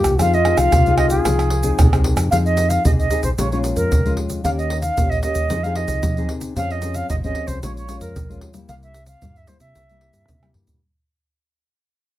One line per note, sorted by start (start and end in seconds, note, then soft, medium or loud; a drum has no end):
0.00 0.17 G2 medium
0.00 0.14 A#3 medium
0.00 0.15 F4 medium
0.00 0.15 G4 medium
0.00 0.21 G4 loud
0.04 0.16 C2 medium
0.04 pandeiro medium
0.04 tamborim medium
0.04 shaker medium
0.04 surdo soft
0.19 0.53 F2 medium
0.19 0.70 F3 medium
0.19 0.35 C4 medium
0.19 0.35 D#4 medium
0.19 2.05 F4 loud
0.19 0.35 G#4 medium
0.19 0.35 F5 loud
0.19 pandeiro medium
0.19 tamborim medium
0.19 shaker medium
0.19 surdo medium
0.34 0.59 D#5 medium
0.34 pandeiro soft
0.34 shaker soft
0.44 0.70 C4 soft
0.44 0.70 D#4 medium
0.44 0.71 G#4 medium
0.44 pandeiro medium
0.44 tamborim medium
0.57 0.69 C2 medium
0.57 0.97 F5 loud
0.57 pandeiro medium
0.57 tamborim medium
0.57 shaker medium
0.72 1.17 C2 loud
0.72 1.23 C3 medium
0.72 pandeiro medium
0.72 tamborim medium
0.72 shaker medium
0.72 surdo medium
0.86 1.22 C4 medium
0.86 1.22 D#4 medium
0.86 1.22 G#4 medium
0.86 pandeiro soft
0.86 shaker soft
0.86 surdo soft
0.97 1.09 D#5 medium
0.97 pandeiro medium
0.97 tamborim medium
1.10 2.00 G#4 medium
1.10 pandeiro medium
1.10 shaker medium
1.10 surdo soft
1.25 1.70 C2 medium
1.25 1.76 F3 soft
1.25 1.50 C4 soft
1.25 1.51 D#4 soft
1.25 1.51 G#4 medium
1.25 pandeiro medium
1.25 tamborim medium
1.25 shaker medium
1.25 surdo medium
1.39 pandeiro soft
1.39 tamborim medium
1.39 shaker soft
1.50 pandeiro medium
1.63 1.87 C4 medium
1.63 1.87 D#4 medium
1.63 1.87 G#4 medium
1.63 pandeiro medium
1.63 shaker medium
1.63 surdo soft
1.79 2.12 C2 medium
1.79 2.29 C3 medium
1.79 pandeiro medium
1.79 tamborim medium
1.79 shaker medium
1.79 surdo loud
1.93 2.28 C4 medium
1.93 2.28 D#4 medium
1.93 2.28 G#4 medium
1.93 pandeiro soft
1.93 tamborim medium
1.93 shaker soft
2.04 pandeiro medium
2.04 surdo soft
2.16 2.28 F2 medium
2.16 pandeiro medium
2.16 tamborim medium
2.16 shaker medium
2.16 surdo soft
2.31 2.77 F2 loud
2.31 2.82 F3 medium
2.31 2.81 C4 medium
2.31 2.81 D#4 medium
2.31 2.81 G#4 medium
2.31 2.37 F5 loud
2.31 pandeiro medium
2.31 shaker medium
2.31 surdo soft
2.45 2.70 D#5 medium
2.45 pandeiro soft
2.45 shaker soft
2.57 pandeiro medium
2.57 shaker medium
2.69 2.83 F5 medium
2.69 pandeiro medium
2.69 shaker medium
2.85 3.07 C2 loud
2.85 3.35 C3 soft
2.85 3.07 C4 soft
2.85 3.07 D#4 medium
2.85 3.07 G#4 soft
2.85 2.91 D#5 medium
2.85 pandeiro medium
2.85 shaker medium
2.85 surdo medium
2.99 3.23 D#5 medium
2.99 pandeiro soft
2.99 shaker soft
2.99 surdo soft
3.11 3.28 C4 medium
3.11 3.28 D#4 medium
3.11 3.28 G#4 medium
3.11 pandeiro medium
3.11 shaker medium
3.23 3.35 B1 medium
3.23 3.29 C5 medium
3.23 pandeiro medium
3.23 shaker medium
3.23 surdo soft
3.38 3.72 A#1 medium
3.38 3.88 A#2 soft
3.38 3.46 G#3 soft
3.38 3.46 C#4 soft
3.38 3.46 F4 medium
3.38 3.50 C#5 medium
3.38 pandeiro medium
3.38 shaker medium
3.38 surdo medium
3.52 4.00 G#3 medium
3.52 4.01 C#4 medium
3.52 4.01 F4 medium
3.52 3.58 C#5 medium
3.52 pandeiro soft
3.52 shaker soft
3.64 pandeiro medium
3.64 shaker medium
3.76 3.88 F2 medium
3.76 4.13 A#4 medium
3.76 pandeiro medium
3.76 shaker medium
3.76 surdo soft
3.91 4.13 C#2 medium
3.91 4.41 F2 medium
3.91 pandeiro medium
3.91 shaker medium
3.91 surdo loud
4.05 4.40 G#3 medium
4.05 4.40 C#4 medium
4.05 4.40 F4 medium
4.05 pandeiro soft
4.05 shaker soft
4.17 pandeiro medium
4.30 pandeiro medium
4.30 shaker medium
4.30 surdo soft
4.44 4.89 D#2 loud
4.44 4.95 D#3 medium
4.44 4.78 A#3 medium
4.44 4.79 C#4 medium
4.44 4.79 G4 medium
4.44 4.50 F5 loud
4.44 pandeiro medium
4.44 shaker medium
4.44 surdo medium
4.58 4.80 D#5 medium
4.58 pandeiro soft
4.58 shaker soft
4.70 pandeiro medium
4.80 5.11 F5 medium
4.80 pandeiro medium
4.80 shaker medium
4.97 5.20 A#1 medium
4.97 5.48 A#2 soft
4.97 5.20 A#3 soft
4.97 5.20 C#4 soft
4.97 5.20 G4 soft
4.97 pandeiro medium
4.97 shaker medium
4.97 surdo medium
5.09 5.21 D#5 medium
5.09 pandeiro soft
5.09 shaker soft
5.09 surdo soft
5.22 5.48 A#3 medium
5.22 5.48 C#4 medium
5.22 5.48 G4 medium
5.22 5.65 D#5 medium
5.22 pandeiro medium
5.22 shaker medium
5.35 5.47 D#2 medium
5.35 pandeiro medium
5.35 shaker medium
5.35 surdo soft
5.50 5.84 F2 medium
5.50 6.01 F3 soft
5.50 5.58 C4 soft
5.50 5.58 D#4 medium
5.50 5.58 G#4 soft
5.50 pandeiro medium
5.50 shaker medium
5.50 surdo medium
5.63 6.13 C4 medium
5.63 6.13 D#4 medium
5.63 6.13 G#4 medium
5.63 5.77 F5 medium
5.63 pandeiro soft
5.63 shaker soft
5.75 6.29 D#5 medium
5.75 pandeiro medium
5.88 6.00 C2 medium
5.88 pandeiro medium
5.88 shaker medium
5.88 surdo soft
6.03 6.54 C3 medium
6.03 6.26 F3 medium
6.03 pandeiro medium
6.03 shaker medium
6.03 surdo loud
6.17 6.53 C4 medium
6.17 6.53 D#4 medium
6.17 6.53 G#4 medium
6.17 pandeiro soft
6.17 shaker soft
6.29 pandeiro medium
6.29 surdo soft
6.41 pandeiro medium
6.41 shaker medium
6.41 surdo soft
6.56 7.01 F2 loud
6.56 7.07 F3 medium
6.56 6.79 C4 medium
6.56 6.79 C#4 medium
6.56 6.79 G#4 medium
6.56 6.73 F5 loud
6.56 pandeiro medium
6.56 shaker medium
6.56 surdo medium
6.70 6.96 D#5 medium
6.70 pandeiro soft
6.70 shaker soft
6.82 7.07 C4 medium
6.82 7.08 C#4 medium
6.82 7.08 G#4 medium
6.82 pandeiro medium
6.82 shaker medium
6.94 7.09 F5 loud
6.94 pandeiro medium
6.94 shaker medium
7.09 7.32 G#1 medium
7.09 7.60 F3 soft
7.09 7.15 D#5 medium
7.09 pandeiro medium
7.09 shaker medium
7.09 surdo medium
7.24 7.59 C4 medium
7.24 7.59 C#4 medium
7.24 7.59 G#4 medium
7.24 7.48 D#5 medium
7.24 pandeiro soft
7.24 shaker soft
7.24 surdo soft
7.35 pandeiro medium
7.47 7.59 C2 medium
7.47 7.61 C5 medium
7.47 pandeiro medium
7.47 shaker medium
7.47 surdo soft
7.62 7.96 A#1 medium
7.62 8.13 A#2 soft
7.62 7.85 G#3 soft
7.62 7.85 C#4 soft
7.62 7.85 F4 medium
7.62 7.75 C#5 medium
7.62 pandeiro medium
7.62 shaker medium
7.62 surdo medium
7.76 8.00 C#5 medium
7.76 pandeiro soft
7.76 shaker soft
7.88 8.14 G#3 medium
7.88 8.14 C#4 medium
7.88 8.14 F4 medium
7.88 pandeiro medium
7.88 shaker medium
8.00 8.13 F2 medium
8.00 8.39 A#4 medium
8.00 pandeiro medium
8.00 shaker medium
8.00 surdo soft
8.16 8.38 A#1 medium
8.16 8.66 F2 medium
8.16 pandeiro medium
8.16 shaker medium
8.16 surdo loud
8.29 8.51 G#3 medium
8.29 8.52 C#4 medium
8.29 8.52 F4 medium
8.29 pandeiro soft
8.29 shaker soft
8.41 pandeiro medium
8.53 8.90 G3 medium
8.53 8.90 A#3 medium
8.53 8.90 E4 medium
8.53 pandeiro medium
8.53 shaker medium
8.53 surdo soft
8.68 9.14 C2 medium
8.68 9.19 C3 soft
8.68 8.74 F5 loud
8.68 pandeiro medium
8.68 shaker medium
8.68 surdo soft
8.83 9.06 E5 medium
8.83 pandeiro soft
8.83 shaker soft
8.94 pandeiro medium
8.94 shaker medium
9.06 9.38 F5 medium
9.06 pandeiro medium
9.06 shaker medium
9.22 9.73 G2 soft
9.22 9.45 G2 medium
9.22 9.38 G3 medium
9.22 9.38 A#3 soft
9.22 9.38 E4 medium
9.22 pandeiro medium
9.22 shaker medium
9.22 surdo medium
9.36 9.49 E5 medium
9.36 pandeiro soft
9.36 shaker soft
9.36 surdo soft
9.47 9.84 G3 soft
9.47 9.84 A#3 medium
9.47 9.84 E4 medium
9.47 9.60 C5 medium
9.47 pandeiro medium
9.47 shaker medium
9.60 9.72 C3 medium
9.60 10.50 E5 medium
9.60 pandeiro medium
9.60 shaker medium
9.60 surdo soft
9.75 10.09 C2 medium
9.75 10.26 C3 soft
9.75 pandeiro medium
9.75 shaker medium
9.75 surdo medium
9.89 10.38 G3 medium
9.89 10.38 A#3 soft
9.89 10.38 E4 medium
9.89 pandeiro soft
9.89 shaker soft
10.01 pandeiro medium
10.13 10.25 G2 medium
10.13 pandeiro medium
10.13 shaker medium
10.13 surdo soft
10.28 10.79 G2 medium
10.28 10.51 C3 medium
10.28 pandeiro medium
10.28 shaker medium
10.28 surdo medium
10.42 10.78 G3 medium
10.42 10.78 A#3 medium
10.42 10.78 E4 medium
10.42 pandeiro soft
10.42 tamborim medium
10.42 shaker soft
10.54 surdo medium
10.54 pandeiro medium
10.54 surdo soft
10.67 pandeiro medium
10.67 shaker medium
10.67 surdo medium